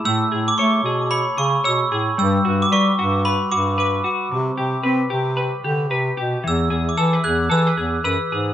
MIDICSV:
0, 0, Header, 1, 4, 480
1, 0, Start_track
1, 0, Tempo, 533333
1, 39, Time_signature, 4, 2, 24, 8
1, 7684, End_track
2, 0, Start_track
2, 0, Title_t, "Glockenspiel"
2, 0, Program_c, 0, 9
2, 49, Note_on_c, 0, 88, 102
2, 432, Note_on_c, 0, 86, 90
2, 439, Note_off_c, 0, 88, 0
2, 517, Note_off_c, 0, 86, 0
2, 521, Note_on_c, 0, 85, 85
2, 997, Note_on_c, 0, 83, 89
2, 1014, Note_off_c, 0, 85, 0
2, 1244, Note_on_c, 0, 85, 88
2, 1245, Note_off_c, 0, 83, 0
2, 1488, Note_off_c, 0, 85, 0
2, 1488, Note_on_c, 0, 88, 89
2, 1841, Note_off_c, 0, 88, 0
2, 1971, Note_on_c, 0, 88, 95
2, 2360, Note_off_c, 0, 88, 0
2, 2360, Note_on_c, 0, 86, 81
2, 2399, Note_off_c, 0, 86, 0
2, 2454, Note_on_c, 0, 85, 83
2, 2925, Note_on_c, 0, 83, 82
2, 2940, Note_off_c, 0, 85, 0
2, 3164, Note_on_c, 0, 86, 89
2, 3169, Note_off_c, 0, 83, 0
2, 3408, Note_off_c, 0, 86, 0
2, 3420, Note_on_c, 0, 86, 64
2, 3767, Note_off_c, 0, 86, 0
2, 5828, Note_on_c, 0, 88, 78
2, 6200, Note_on_c, 0, 86, 71
2, 6209, Note_off_c, 0, 88, 0
2, 6278, Note_on_c, 0, 88, 70
2, 6290, Note_off_c, 0, 86, 0
2, 6515, Note_on_c, 0, 90, 81
2, 6526, Note_off_c, 0, 88, 0
2, 6624, Note_off_c, 0, 90, 0
2, 6763, Note_on_c, 0, 88, 86
2, 7208, Note_off_c, 0, 88, 0
2, 7246, Note_on_c, 0, 88, 68
2, 7684, Note_off_c, 0, 88, 0
2, 7684, End_track
3, 0, Start_track
3, 0, Title_t, "Clean electric guitar"
3, 0, Program_c, 1, 27
3, 0, Note_on_c, 1, 64, 58
3, 0, Note_on_c, 1, 68, 69
3, 45, Note_on_c, 1, 57, 78
3, 282, Note_off_c, 1, 68, 0
3, 286, Note_on_c, 1, 68, 52
3, 532, Note_on_c, 1, 73, 62
3, 759, Note_off_c, 1, 68, 0
3, 770, Note_on_c, 1, 68, 58
3, 988, Note_off_c, 1, 73, 0
3, 999, Note_on_c, 1, 73, 60
3, 1227, Note_off_c, 1, 68, 0
3, 1238, Note_on_c, 1, 68, 53
3, 1469, Note_off_c, 1, 73, 0
3, 1480, Note_on_c, 1, 73, 64
3, 1715, Note_off_c, 1, 68, 0
3, 1726, Note_on_c, 1, 68, 61
3, 1958, Note_off_c, 1, 57, 0
3, 1961, Note_on_c, 1, 55, 77
3, 2017, Note_off_c, 1, 73, 0
3, 2020, Note_off_c, 1, 68, 0
3, 2203, Note_on_c, 1, 66, 56
3, 2230, Note_off_c, 1, 64, 0
3, 2448, Note_on_c, 1, 71, 66
3, 2678, Note_off_c, 1, 66, 0
3, 2689, Note_on_c, 1, 66, 64
3, 2924, Note_off_c, 1, 71, 0
3, 2928, Note_on_c, 1, 71, 58
3, 3155, Note_off_c, 1, 66, 0
3, 3166, Note_on_c, 1, 66, 57
3, 3398, Note_off_c, 1, 71, 0
3, 3402, Note_on_c, 1, 71, 70
3, 3626, Note_off_c, 1, 66, 0
3, 3637, Note_on_c, 1, 66, 62
3, 3882, Note_on_c, 1, 48, 75
3, 3935, Note_off_c, 1, 66, 0
3, 4117, Note_on_c, 1, 67, 58
3, 4347, Note_off_c, 1, 71, 0
3, 4350, Note_on_c, 1, 71, 62
3, 4580, Note_off_c, 1, 67, 0
3, 4590, Note_on_c, 1, 67, 63
3, 4827, Note_off_c, 1, 71, 0
3, 4830, Note_on_c, 1, 71, 66
3, 5069, Note_off_c, 1, 67, 0
3, 5080, Note_on_c, 1, 67, 58
3, 5111, Note_off_c, 1, 55, 0
3, 5314, Note_off_c, 1, 71, 0
3, 5318, Note_on_c, 1, 71, 66
3, 5545, Note_off_c, 1, 67, 0
3, 5556, Note_on_c, 1, 67, 61
3, 5793, Note_on_c, 1, 52, 76
3, 5801, Note_off_c, 1, 48, 0
3, 5855, Note_off_c, 1, 67, 0
3, 6033, Note_on_c, 1, 68, 56
3, 6275, Note_off_c, 1, 71, 0
3, 6278, Note_on_c, 1, 69, 64
3, 6419, Note_off_c, 1, 69, 0
3, 6419, Note_on_c, 1, 71, 49
3, 6515, Note_off_c, 1, 68, 0
3, 6519, Note_on_c, 1, 68, 60
3, 6744, Note_off_c, 1, 71, 0
3, 6747, Note_on_c, 1, 69, 59
3, 6903, Note_off_c, 1, 69, 0
3, 6903, Note_on_c, 1, 71, 53
3, 6994, Note_off_c, 1, 68, 0
3, 6997, Note_on_c, 1, 68, 57
3, 7229, Note_off_c, 1, 71, 0
3, 7240, Note_on_c, 1, 71, 72
3, 7487, Note_off_c, 1, 68, 0
3, 7491, Note_on_c, 1, 68, 57
3, 7684, Note_off_c, 1, 52, 0
3, 7684, Note_off_c, 1, 68, 0
3, 7684, Note_off_c, 1, 71, 0
3, 7684, End_track
4, 0, Start_track
4, 0, Title_t, "Bass clarinet"
4, 0, Program_c, 2, 71
4, 33, Note_on_c, 2, 45, 99
4, 227, Note_off_c, 2, 45, 0
4, 279, Note_on_c, 2, 45, 80
4, 471, Note_off_c, 2, 45, 0
4, 523, Note_on_c, 2, 57, 99
4, 713, Note_off_c, 2, 57, 0
4, 757, Note_on_c, 2, 47, 78
4, 1141, Note_off_c, 2, 47, 0
4, 1246, Note_on_c, 2, 49, 91
4, 1435, Note_off_c, 2, 49, 0
4, 1483, Note_on_c, 2, 47, 83
4, 1673, Note_off_c, 2, 47, 0
4, 1718, Note_on_c, 2, 45, 82
4, 1910, Note_off_c, 2, 45, 0
4, 1964, Note_on_c, 2, 43, 104
4, 2154, Note_off_c, 2, 43, 0
4, 2208, Note_on_c, 2, 43, 89
4, 2396, Note_off_c, 2, 43, 0
4, 2444, Note_on_c, 2, 55, 94
4, 2634, Note_off_c, 2, 55, 0
4, 2691, Note_on_c, 2, 43, 91
4, 3070, Note_off_c, 2, 43, 0
4, 3170, Note_on_c, 2, 43, 84
4, 3619, Note_off_c, 2, 43, 0
4, 3881, Note_on_c, 2, 48, 102
4, 4072, Note_off_c, 2, 48, 0
4, 4120, Note_on_c, 2, 48, 84
4, 4311, Note_off_c, 2, 48, 0
4, 4362, Note_on_c, 2, 60, 94
4, 4552, Note_off_c, 2, 60, 0
4, 4602, Note_on_c, 2, 48, 87
4, 4984, Note_off_c, 2, 48, 0
4, 5078, Note_on_c, 2, 50, 91
4, 5323, Note_on_c, 2, 48, 84
4, 5337, Note_off_c, 2, 50, 0
4, 5513, Note_off_c, 2, 48, 0
4, 5561, Note_on_c, 2, 47, 80
4, 5752, Note_off_c, 2, 47, 0
4, 5802, Note_on_c, 2, 40, 95
4, 5993, Note_off_c, 2, 40, 0
4, 6036, Note_on_c, 2, 40, 87
4, 6230, Note_off_c, 2, 40, 0
4, 6277, Note_on_c, 2, 52, 97
4, 6470, Note_off_c, 2, 52, 0
4, 6525, Note_on_c, 2, 40, 84
4, 6715, Note_off_c, 2, 40, 0
4, 6761, Note_on_c, 2, 52, 100
4, 6953, Note_off_c, 2, 52, 0
4, 7000, Note_on_c, 2, 40, 84
4, 7192, Note_off_c, 2, 40, 0
4, 7238, Note_on_c, 2, 42, 92
4, 7354, Note_off_c, 2, 42, 0
4, 7483, Note_on_c, 2, 44, 83
4, 7674, Note_off_c, 2, 44, 0
4, 7684, End_track
0, 0, End_of_file